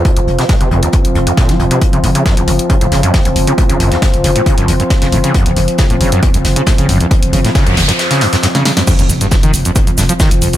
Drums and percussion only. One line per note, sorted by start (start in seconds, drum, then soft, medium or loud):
0.05 kick loud
0.05 closed hi-hat medium
0.17 closed hi-hat medium
0.27 closed hi-hat medium
0.39 snare soft
0.39 closed hi-hat medium
0.49 kick loud
0.49 snare loud
0.49 closed hi-hat medium
0.61 closed hi-hat medium
0.71 closed hi-hat medium
0.83 closed hi-hat medium
0.93 kick loud
0.93 closed hi-hat medium
1.05 closed hi-hat medium
1.15 closed hi-hat medium
1.27 closed hi-hat medium
1.37 kick loud
1.37 snare loud
1.37 closed hi-hat medium
1.49 snare soft
1.49 closed hi-hat medium
1.60 closed hi-hat medium
1.71 closed hi-hat soft
1.71 closed hi-hat medium
1.81 kick loud
1.81 closed hi-hat medium
1.93 closed hi-hat medium
2.04 closed hi-hat medium
2.04 open hi-hat loud
2.14 closed hi-hat soft
2.14 closed hi-hat medium
2.26 kick loud
2.26 snare loud
2.26 closed hi-hat medium
2.37 closed hi-hat medium
2.48 closed hi-hat medium
2.48 open hi-hat loud
2.59 closed hi-hat medium
2.70 kick loud
2.70 closed hi-hat medium
2.81 closed hi-hat medium
2.92 snare medium
2.92 closed hi-hat medium
2.92 open hi-hat loud
3.03 closed hi-hat medium
3.14 kick loud
3.14 snare loud
3.14 closed hi-hat medium
3.25 closed hi-hat medium
3.25 closed hi-hat soft
3.36 closed hi-hat medium
3.36 open hi-hat loud
3.47 closed hi-hat medium
3.58 kick loud
3.58 closed hi-hat medium
3.70 closed hi-hat medium
3.80 closed hi-hat medium
3.80 open hi-hat loud
3.92 snare soft
3.92 closed hi-hat medium
4.02 kick loud
4.02 snare loud
4.02 closed hi-hat medium
4.14 closed hi-hat medium
4.24 closed hi-hat medium
4.24 open hi-hat loud
4.36 closed hi-hat medium
4.46 kick loud
4.46 closed hi-hat medium
4.58 closed hi-hat medium
4.68 closed hi-hat medium
4.68 open hi-hat loud
4.80 closed hi-hat medium
4.90 kick loud
4.90 snare loud
4.90 closed hi-hat medium
5.02 snare medium
5.02 closed hi-hat medium
5.12 closed hi-hat medium
5.12 open hi-hat loud
5.24 closed hi-hat medium
5.24 closed hi-hat soft
5.34 kick loud
5.34 closed hi-hat medium
5.46 closed hi-hat medium
5.56 closed hi-hat medium
5.56 open hi-hat loud
5.68 closed hi-hat soft
5.68 closed hi-hat medium
5.78 kick loud
5.78 snare loud
5.78 closed hi-hat medium
5.90 closed hi-hat medium
6.01 open hi-hat loud
6.12 closed hi-hat medium
6.23 kick loud
6.23 closed hi-hat medium
6.34 closed hi-hat medium
6.44 snare medium
6.44 closed hi-hat medium
6.44 open hi-hat loud
6.56 closed hi-hat medium
6.67 kick loud
6.67 snare loud
6.67 closed hi-hat medium
6.78 closed hi-hat medium
6.78 closed hi-hat soft
6.89 closed hi-hat medium
6.89 open hi-hat loud
7.00 closed hi-hat medium
7.11 kick loud
7.11 closed hi-hat medium
7.23 closed hi-hat medium
7.33 closed hi-hat medium
7.33 open hi-hat loud
7.45 snare soft
7.45 closed hi-hat medium
7.55 kick loud
7.55 snare loud
7.55 closed hi-hat medium
7.67 closed hi-hat medium
7.77 snare loud
7.77 closed hi-hat medium
7.77 open hi-hat loud
7.88 snare loud
7.88 closed hi-hat medium
7.99 snare loud
7.99 closed hi-hat medium
8.11 snare loud
8.11 closed hi-hat medium
8.21 snare loud
8.21 closed hi-hat medium
8.21 open hi-hat loud
8.33 snare loud
8.33 closed hi-hat medium
8.43 snare loud
8.43 closed hi-hat medium
8.55 snare medium
8.55 snare soft
8.55 closed hi-hat medium
8.65 snare medium
8.65 snare loud
8.65 closed hi-hat medium
8.65 open hi-hat loud
8.77 snare loud
8.77 snare medium
8.77 closed hi-hat medium
8.87 kick loud
8.87 closed hi-hat medium
8.87 crash loud
8.87 shaker soft
8.99 closed hi-hat medium
8.99 shaker soft
9.09 closed hi-hat medium
9.09 open hi-hat loud
9.09 shaker medium
9.21 closed hi-hat soft
9.21 closed hi-hat medium
9.21 shaker soft
9.31 kick loud
9.31 snare loud
9.31 closed hi-hat medium
9.31 shaker soft
9.43 closed hi-hat medium
9.43 shaker soft
9.53 closed hi-hat medium
9.53 open hi-hat loud
9.53 shaker medium
9.65 closed hi-hat medium
9.65 shaker soft
9.76 kick loud
9.76 closed hi-hat medium
9.76 shaker soft
9.87 closed hi-hat medium
9.87 shaker soft
9.97 snare medium
9.97 closed hi-hat medium
9.97 open hi-hat loud
9.97 shaker medium
10.09 closed hi-hat medium
10.09 shaker soft
10.20 kick loud
10.20 snare loud
10.20 closed hi-hat medium
10.20 shaker soft
10.31 closed hi-hat soft
10.31 closed hi-hat medium
10.31 shaker soft
10.42 closed hi-hat medium
10.42 open hi-hat loud
10.42 shaker medium
10.53 closed hi-hat medium
10.53 shaker soft